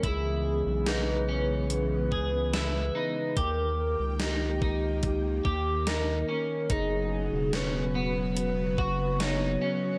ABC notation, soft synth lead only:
X:1
M:4/4
L:1/8
Q:1/4=72
K:C#dor
V:1 name="Soft synth lead"
G2 B2 B4 | A A =G2 G2 A2 | G2 B2 B2 c2 |]